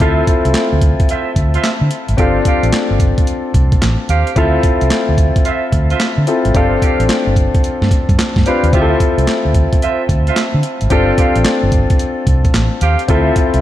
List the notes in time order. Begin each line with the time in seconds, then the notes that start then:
0.00 D2 C4 E4 F4 A4 C5 E5, kick, closed hi-hat
0.27 kick, closed hi-hat
0.45 C2, closed hi-hat
0.54 snare, clap, closed hi-hat
0.72 D2
0.82 kick, closed hi-hat
1.00 kick, closed hi-hat
1.09 F4 C5 E5, closed hi-hat
1.36 D2, kick, closed hi-hat
1.54 F4 C5 E5, closed hi-hat
1.64 snare, clap, closed hi-hat
1.81 D3
1.91 closed hi-hat
2.08 G#1, closed hi-hat
2.17 C4 D4 F4 G4 A4 C5 F5, kick, closed hi-hat
2.45 G4 C5 F5, kick, closed hi-hat
2.63 A1, closed hi-hat
2.73 muted fingered electric bass stroke, snare, clap, closed hi-hat
2.91 G1
3.00 kick, closed hi-hat
3.18 kick, closed hi-hat
3.27 closed hi-hat
3.54 C2, kick, closed hi-hat
3.72 kick, closed hi-hat
3.82 A1, snare, clap, closed hi-hat
4.08 D#2 G4 C5 F5, closed hi-hat
4.27 closed hi-hat
4.35 D2 C4 E4 F4 A4 C5 E5, kick, closed hi-hat
4.63 kick, closed hi-hat
4.81 C2, closed hi-hat
4.90 snare, clap, closed hi-hat
5.09 D2
5.18 kick, closed hi-hat
5.36 kick, closed hi-hat
5.45 F4 C5 E5, closed hi-hat
5.72 D2, kick, closed hi-hat
5.90 F4 C5 E5, closed hi-hat
6.00 snare, clap, closed hi-hat
6.18 D3
6.27 C4 E4 F4 A4, closed hi-hat
6.45 G#1, closed hi-hat
6.54 C4 D4 F4 G4 A4 C5 F5, kick, closed hi-hat
6.81 G4 C5 F5, kick, closed hi-hat
7.00 A1, closed hi-hat
7.09 snare, clap, closed hi-hat
7.27 G1
7.36 kick, closed hi-hat
7.54 kick, closed hi-hat
7.64 closed hi-hat
7.82 G2, snare
7.91 kick, closed hi-hat
8.09 G2, kick, closed hi-hat
8.19 snare, clap, closed hi-hat
8.36 G2, kick, snare
8.45 C4 D4 F4 G4 B4 C5 F5, closed hi-hat
8.63 D#2, closed hi-hat
8.72 D2 C4 E4 F4 G4 C5 E5, kick, closed hi-hat
8.82 A4
9.00 kick, closed hi-hat
9.18 C2, closed hi-hat
9.27 snare, clap, closed hi-hat
9.45 D2
9.54 kick, closed hi-hat
9.73 kick, closed hi-hat
9.82 F4 C5 E5, closed hi-hat
10.09 D2, kick, closed hi-hat
10.27 F4 C5 E5, closed hi-hat
10.36 snare, clap, closed hi-hat
10.54 D3
10.63 closed hi-hat
10.81 G#1, closed hi-hat
10.90 C4 D4 F4 G4 A4 C5 F5, kick, closed hi-hat
11.18 G4 C5 F5, kick, closed hi-hat
11.36 A1, closed hi-hat
11.45 snare, clap, closed hi-hat
11.63 G1
11.72 kick, closed hi-hat
11.90 kick, closed hi-hat
11.99 closed hi-hat
12.27 C2, kick, closed hi-hat
12.45 kick, closed hi-hat
12.54 A1, snare, clap, closed hi-hat
12.81 D#2 G4 C5 F5, closed hi-hat
12.99 closed hi-hat
13.08 D2 C4 E4 F4 A4 C5 E5, kick, closed hi-hat
13.36 kick, closed hi-hat
13.54 C2, closed hi-hat